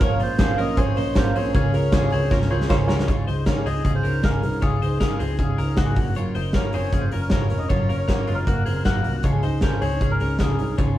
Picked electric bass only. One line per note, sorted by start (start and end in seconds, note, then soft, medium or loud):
0.01 0.17 A#1 loud
0.20 0.36 A#1 medium
0.39 0.55 A#1 loud
0.59 0.74 A#1 medium
0.78 0.93 A#1 medium
0.98 1.13 A#1 loud
1.16 1.32 A#1 loud
1.35 1.51 A#1 medium
1.55 1.70 C#2 medium
1.73 1.89 C#2 loud
1.93 2.08 C#2 medium
2.12 2.28 C#2 loud
2.31 2.47 C#2 loud
2.50 2.66 C#2 medium
2.70 2.85 C#2 loud
2.89 3.04 C#2 medium
3.09 3.24 C#2 medium
3.28 3.51 C#2 medium
3.66 3.81 C#2 medium
3.85 4.01 C#2 loud
4.04 4.20 C#2 medium
4.24 4.39 C#2 medium
4.43 4.59 C2 medium
4.62 4.78 C#2 medium
4.82 5.05 C#2 medium
5.20 5.36 C#2 loud
5.39 5.55 C#2 medium
5.59 5.74 C#2 medium
5.78 5.93 C#2 medium
5.97 6.28 F#1 medium
6.35 6.59 F#1 loud
6.75 6.90 F#1 medium
6.93 7.09 F#1 medium
7.13 7.29 F#1 loud
7.31 7.47 F#1 medium
7.50 7.66 F1 medium
7.70 7.86 F#1 medium
7.89 8.13 F#1 medium
8.28 8.44 F#1 medium
8.47 8.63 F#1 medium
8.67 8.82 F#1 medium
8.86 9.02 F#1 medium
9.06 9.21 C2 medium
9.24 9.40 C#2 medium
9.44 9.68 C#2 medium
9.82 9.98 C#2 medium
10.01 10.17 C#2 medium
10.21 10.37 C#2 medium
10.40 10.56 C#2 medium
10.60 10.75 C2 medium
10.79 10.94 C#2 medium